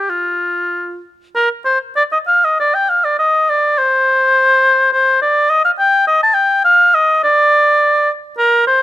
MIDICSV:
0, 0, Header, 1, 2, 480
1, 0, Start_track
1, 0, Tempo, 634249
1, 1026, Time_signature, 3, 2, 24, 8
1, 1026, Tempo, 601202
1, 2466, Tempo, 580833
1, 7149, End_track
2, 0, Start_track
2, 0, Title_t, "Oboe"
2, 0, Program_c, 0, 68
2, 0, Note_on_c, 0, 67, 55
2, 74, Note_on_c, 0, 65, 43
2, 85, Note_off_c, 0, 67, 0
2, 793, Note_off_c, 0, 65, 0
2, 1028, Note_on_c, 0, 70, 68
2, 1136, Note_off_c, 0, 70, 0
2, 1262, Note_on_c, 0, 72, 64
2, 1372, Note_off_c, 0, 72, 0
2, 1512, Note_on_c, 0, 74, 72
2, 1566, Note_off_c, 0, 74, 0
2, 1636, Note_on_c, 0, 75, 60
2, 1689, Note_off_c, 0, 75, 0
2, 1758, Note_on_c, 0, 77, 78
2, 1896, Note_on_c, 0, 75, 65
2, 1908, Note_off_c, 0, 77, 0
2, 2002, Note_off_c, 0, 75, 0
2, 2016, Note_on_c, 0, 74, 68
2, 2137, Note_on_c, 0, 79, 67
2, 2149, Note_off_c, 0, 74, 0
2, 2255, Note_on_c, 0, 77, 63
2, 2267, Note_off_c, 0, 79, 0
2, 2373, Note_on_c, 0, 74, 64
2, 2385, Note_off_c, 0, 77, 0
2, 2480, Note_off_c, 0, 74, 0
2, 2491, Note_on_c, 0, 75, 74
2, 2743, Note_on_c, 0, 74, 66
2, 2755, Note_off_c, 0, 75, 0
2, 2982, Note_on_c, 0, 72, 85
2, 2995, Note_off_c, 0, 74, 0
2, 3921, Note_off_c, 0, 72, 0
2, 3926, Note_on_c, 0, 72, 69
2, 4157, Note_off_c, 0, 72, 0
2, 4166, Note_on_c, 0, 74, 73
2, 4398, Note_on_c, 0, 75, 84
2, 4411, Note_off_c, 0, 74, 0
2, 4516, Note_off_c, 0, 75, 0
2, 4524, Note_on_c, 0, 77, 66
2, 4575, Note_off_c, 0, 77, 0
2, 4639, Note_on_c, 0, 79, 82
2, 4870, Note_off_c, 0, 79, 0
2, 4875, Note_on_c, 0, 75, 80
2, 4991, Note_off_c, 0, 75, 0
2, 5005, Note_on_c, 0, 81, 72
2, 5096, Note_on_c, 0, 79, 71
2, 5108, Note_off_c, 0, 81, 0
2, 5342, Note_off_c, 0, 79, 0
2, 5347, Note_on_c, 0, 77, 90
2, 5593, Note_on_c, 0, 75, 80
2, 5606, Note_off_c, 0, 77, 0
2, 5830, Note_off_c, 0, 75, 0
2, 5834, Note_on_c, 0, 74, 91
2, 6549, Note_off_c, 0, 74, 0
2, 6783, Note_on_c, 0, 70, 81
2, 7006, Note_off_c, 0, 70, 0
2, 7021, Note_on_c, 0, 72, 78
2, 7140, Note_off_c, 0, 72, 0
2, 7149, End_track
0, 0, End_of_file